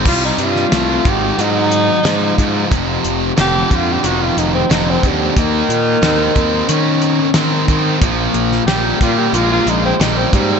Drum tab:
CC |x---------------|----------------|----------------|----------------|
HH |--x-x-x-x-x-x-x-|x-x-x-x-x-x-x-x-|x-x-x-x-x-x-x-x-|x-x-x-x-x-x-x-x-|
SD |---oo-------o---|----o-------o---|----o-------o---|---oo-------o---|
BD |o-----o-------o-|o-----o-------o-|o-----o-------o-|o-----o-------o-|